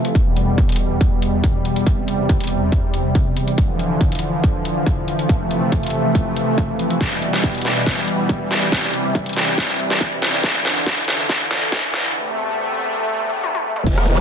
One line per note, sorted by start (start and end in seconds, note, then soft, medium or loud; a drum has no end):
0.00 0.13 C3 medium
0.00 0.11 E3 medium
0.00 0.12 F3 medium
0.00 0.13 A3 medium
0.05 closed hi-hat soft
0.15 3.55 E2 medium
0.15 1.85 B2 medium
0.15 3.55 G3 medium
0.15 kick medium
0.15 closed hi-hat medium
0.37 closed hi-hat medium
0.58 kick medium
0.58 closed hi-hat medium
0.69 closed hi-hat soft
0.72 closed hi-hat medium
0.76 closed hi-hat medium
1.01 kick medium
1.01 closed hi-hat medium
1.22 closed hi-hat medium
1.44 kick medium
1.44 closed hi-hat medium
1.65 closed hi-hat medium
1.76 closed hi-hat soft
1.87 3.56 C3 medium
1.87 kick medium
1.87 closed hi-hat medium
2.08 closed hi-hat soft
2.29 kick medium
2.29 closed hi-hat medium
2.40 closed hi-hat soft
2.44 closed hi-hat medium
2.47 closed hi-hat medium
2.72 kick loud
2.72 closed hi-hat medium
2.94 closed hi-hat medium
3.15 kick medium
3.15 closed hi-hat medium
3.37 closed hi-hat medium
3.48 closed hi-hat soft
3.58 5.28 D3 medium
3.58 12.11 E3 medium
3.58 6.97 F3 medium
3.58 kick medium
3.58 closed hi-hat medium
3.79 closed hi-hat soft
4.01 kick loud
4.01 closed hi-hat medium
4.12 closed hi-hat soft
4.15 closed hi-hat medium
4.19 closed hi-hat medium
4.44 kick medium
4.44 closed hi-hat medium
4.65 closed hi-hat soft
4.87 kick loud
4.87 closed hi-hat medium
5.08 closed hi-hat soft
5.19 closed hi-hat soft
5.29 6.99 C3 medium
5.29 6.99 A3 medium
5.29 kick medium
5.29 closed hi-hat medium
5.51 closed hi-hat soft
5.72 kick medium
5.72 closed hi-hat medium
5.83 closed hi-hat soft
5.87 closed hi-hat medium
5.90 closed hi-hat medium
6.15 kick medium
6.15 closed hi-hat medium
6.36 closed hi-hat medium
6.58 kick medium
6.58 closed hi-hat medium
6.79 closed hi-hat medium
6.90 closed hi-hat soft
7.01 8.70 B2 medium
7.01 10.40 G3 medium
7.01 kick medium
7.01 snare soft
7.01 closed hi-hat medium
7.22 closed hi-hat soft
7.33 snare soft
7.44 kick loud
7.44 closed hi-hat medium
7.55 closed hi-hat soft
7.58 closed hi-hat medium
7.62 snare medium
7.62 closed hi-hat medium
7.86 kick loud
7.86 snare soft
7.86 closed hi-hat medium
8.08 closed hi-hat medium
8.29 kick loud
8.29 closed hi-hat medium
8.51 snare medium
8.51 closed hi-hat soft
8.62 closed hi-hat soft
8.72 10.42 C3 medium
8.72 kick loud
8.72 snare medium
8.72 closed hi-hat medium
8.94 closed hi-hat medium
9.15 kick loud
9.15 closed hi-hat medium
9.26 closed hi-hat soft
9.29 closed hi-hat medium
9.33 snare medium
9.33 closed hi-hat medium
9.58 kick medium
9.58 snare medium
9.58 closed hi-hat medium
9.79 closed hi-hat medium
9.90 snare medium
10.01 kick loud
10.01 closed hi-hat medium
10.22 snare medium
10.22 closed hi-hat medium
10.33 closed hi-hat soft
10.44 12.13 D3 medium
10.44 kick medium
10.44 snare medium
10.44 closed hi-hat medium
10.65 snare medium
10.65 closed hi-hat medium
10.86 kick loud
10.86 snare medium
10.86 closed hi-hat medium
10.98 closed hi-hat soft
11.01 closed hi-hat medium
11.04 snare medium
11.04 closed hi-hat medium
11.29 kick loud
11.29 snare medium
11.29 closed hi-hat medium
11.51 snare medium
11.51 closed hi-hat medium
11.72 kick loud
11.72 snare medium
11.72 closed hi-hat medium
11.94 snare medium
11.94 closed hi-hat medium
12.05 closed hi-hat soft
12.15 13.85 E2 medium
12.15 13.85 C3 medium
12.15 13.85 A3 medium
13.44 high tom medium
13.55 high tom medium
13.76 mid tom medium
13.87 14.06 E1 loud
13.87 14.21 E3 medium
13.87 14.21 B3 medium
13.87 14.21 G4 medium
13.87 kick loud
13.87 closed hi-hat medium
13.87 crash loud
13.98 cross-stick medium
14.08 14.21 E1 loud
14.08 closed hi-hat medium